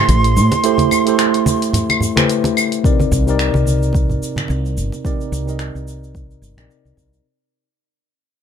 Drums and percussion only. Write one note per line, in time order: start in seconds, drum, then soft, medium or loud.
0.09 closed hi-hat medium
0.09 cabasa soft
0.24 closed hi-hat soft
0.24 cabasa soft
0.37 cabasa medium
0.52 closed hi-hat soft
0.52 muted conga medium
0.52 cabasa soft
0.64 closed hi-hat medium
0.64 cabasa soft
0.78 closed hi-hat soft
0.78 high conga medium
0.78 cabasa soft
0.91 muted conga medium
0.91 cabasa medium
0.91 claves medium
1.07 closed hi-hat soft
1.07 cabasa soft
1.19 finger snap medium
1.19 closed hi-hat medium
1.19 cabasa soft
1.34 closed hi-hat soft
1.34 cabasa soft
1.46 muted conga medium
1.46 high conga medium
1.46 cabasa medium
1.62 closed hi-hat soft
1.62 cabasa soft
1.73 closed hi-hat medium
1.73 low conga loud
1.73 cabasa soft
1.90 closed hi-hat soft
1.90 muted conga medium
1.90 cabasa soft
1.90 claves medium
2.01 low conga medium
2.01 cabasa medium
2.17 finger snap medium
2.17 closed hi-hat medium
2.17 high conga medium
2.17 cabasa soft
2.30 closed hi-hat medium
2.30 cabasa soft
2.44 closed hi-hat soft
2.44 muted conga medium
2.44 cabasa soft
2.57 cabasa medium
2.57 claves medium
2.72 closed hi-hat soft
2.72 cabasa soft
2.84 kick loud
2.84 cabasa soft
2.99 muted conga medium
2.99 high conga medium
2.99 cabasa soft
3.12 kick medium
3.12 cabasa medium
3.28 cabasa soft
3.39 finger snap medium
3.39 cabasa soft
3.54 muted conga medium
3.54 cabasa soft
3.65 high conga medium
3.65 cabasa medium
3.83 cabasa soft
3.93 kick loud
3.93 muted conga medium
3.93 cabasa soft
4.09 low conga medium
4.09 cabasa soft
4.23 cabasa medium
4.36 finger snap medium
4.36 high conga medium
4.36 low conga medium
4.36 cabasa soft
4.48 muted conga medium
4.48 cabasa soft
4.66 cabasa soft
4.77 cabasa medium
4.92 muted conga medium
4.92 cabasa soft
5.05 kick loud
5.05 cabasa soft
5.21 cabasa soft
5.33 cabasa medium
5.48 cabasa soft
5.59 finger snap medium
5.59 cabasa soft
5.76 cabasa soft
5.88 cabasa medium
6.04 cabasa soft
6.15 kick loud
6.15 cabasa soft
6.31 cabasa soft
6.43 cabasa medium
6.58 finger snap medium
6.58 cabasa soft
6.71 cabasa soft
6.86 cabasa soft
6.97 kick medium
6.97 cabasa medium
7.13 cabasa soft